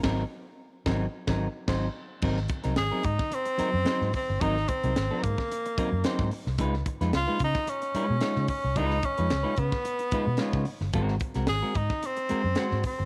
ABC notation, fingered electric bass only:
X:1
M:4/4
L:1/16
Q:1/4=110
K:Ab
V:1 name="Fingered electric bass" clef=bass
A,,,2 z4 A,,,2 z A,,,2 z A,,,2 z2 | A,,,2 z C,, A,,, z A,, z4 _G,, z A,, z =G,,, | A,,,2 z C,, A,,, z A,, z4 _G,, z A,, z C,, | D,,2 z F,, D,, z D, z4 _C, z D, z =C,, |
D,,2 z F,, D,, z D, z4 _C, z D, z G,,, | A,,,2 z C,, A,,, z A,, z4 _G,, z A,, z =G,,, |]